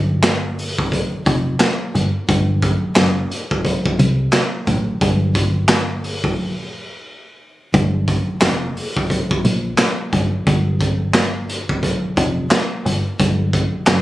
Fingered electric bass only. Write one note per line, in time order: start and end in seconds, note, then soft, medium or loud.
0.00 0.74 G1 loud
1.26 1.54 F1 loud
1.95 2.11 G1 medium
2.29 2.73 G1 loud
2.97 3.25 F#1 medium
3.99 4.27 C2 loud
4.67 4.84 A1 loud
5.01 6.20 G1 loud
7.74 8.18 G1 loud
8.42 8.70 F1 loud
9.45 9.73 A#1 medium
10.13 10.29 G1 loud
10.47 11.65 G1 loud
12.17 12.45 F1 medium
12.85 13.02 G1 loud
13.20 13.64 G1 loud
13.88 14.02 F#1 medium